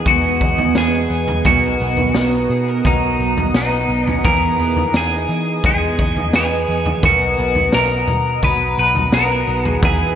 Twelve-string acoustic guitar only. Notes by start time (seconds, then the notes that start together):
Already playing: E3 B3 D#4 G#4
0.07 G#3
0.41 D#4
0.76 B3
1.11 D#4
1.46 B2 A#4
1.81 B3
2.16 D#4
2.50 G#4
2.68 A#4
2.85 F#3
3.20 D#4
3.55 B3
3.90 D#4
4.24 E3 G#4
4.59 B3
4.94 D#4
5.29 G#4
5.64 G#3
5.99 D#4
6.33 B3
6.69 D#4
7.04 B2 A#4
7.38 B3
7.73 D#4
8.43 F#3
8.78 D#4
9.13 B3
9.47 D#4
9.83 E3 G#4